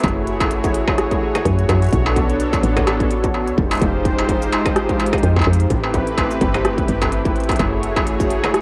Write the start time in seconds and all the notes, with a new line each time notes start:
Already playing: A3 E4
0.00 C#5, closed hi-hat
0.04 F#1 F#4 G#4, kick, closed hi-hat, struck metal
0.08 closed hi-hat
0.27 closed hi-hat
0.40 kick, closed hi-hat, struck metal
0.51 closed hi-hat
0.64 kick, closed hi-hat, cabasa
0.74 closed hi-hat
0.88 kick, struck metal
0.98 cross-stick, closed hi-hat
1.11 kick, closed hi-hat
1.35 closed hi-hat, struck metal
1.45 F#2, kick, closed hi-hat
1.59 closed hi-hat
1.69 F#2, kick, closed hi-hat, struck metal
1.82 closed hi-hat
1.84 closed hi-hat
1.86 closed hi-hat
1.89 closed hi-hat
1.91 B1 B3 D4 A4, kick, closed hi-hat
1.93 closed hi-hat
2.06 struck metal
2.16 kick, closed hi-hat
2.29 closed hi-hat
2.40 closed hi-hat
2.53 kick, closed hi-hat, struck metal, cabasa
2.63 A1, closed hi-hat
2.77 kick, closed hi-hat, struck metal
2.87 cross-stick, closed hi-hat, struck metal
3.00 kick, closed hi-hat
3.11 closed hi-hat
3.24 kick, closed hi-hat, cabasa
3.34 closed hi-hat, struck metal
3.47 C#2, closed hi-hat
3.58 F1 G#3 D#4 F4 G4 C5, kick
3.71 closed hi-hat, struck metal
3.73 closed hi-hat
3.75 closed hi-hat
3.77 closed hi-hat
3.79 F1, kick, closed hi-hat
3.82 closed hi-hat
4.05 kick, closed hi-hat
4.18 closed hi-hat, struck metal
4.29 kick, closed hi-hat
4.42 closed hi-hat, cabasa
4.52 closed hi-hat, struck metal
4.66 kick, closed hi-hat, struck metal
4.76 cross-stick, closed hi-hat
4.89 kick, closed hi-hat
5.00 closed hi-hat, struck metal
5.06 closed hi-hat
5.13 kick, closed hi-hat, struck metal
5.18 closed hi-hat
5.23 F2, closed hi-hat
5.36 kick, struck metal
5.39 closed hi-hat, struck metal
5.42 struck metal
5.44 F2, struck metal
5.53 closed hi-hat
5.60 closed hi-hat
5.70 A1 A3 C4 E4 G4 B4, kick, closed hi-hat
5.84 struck metal
5.94 kick, closed hi-hat
6.07 closed hi-hat
6.18 kick, closed hi-hat, struck metal
6.31 cabasa
6.41 G1, kick, closed hi-hat
6.54 closed hi-hat, struck metal
6.65 cross-stick, closed hi-hat
6.78 kick, closed hi-hat
6.88 G1, closed hi-hat
7.02 kick, closed hi-hat, struck metal, cabasa
7.12 closed hi-hat
7.25 kick, closed hi-hat
7.36 A1, closed hi-hat
7.40 closed hi-hat
7.44 closed hi-hat
7.49 kick, closed hi-hat, struck metal
7.52 closed hi-hat
7.56 F#1, kick, closed hi-hat
7.59 F#4 G#4 C#5, closed hi-hat, struck metal
7.83 closed hi-hat
7.96 kick, closed hi-hat, struck metal
8.07 closed hi-hat
8.20 kick, closed hi-hat, cabasa
8.30 closed hi-hat
8.44 closed hi-hat, struck metal
8.54 cross-stick, closed hi-hat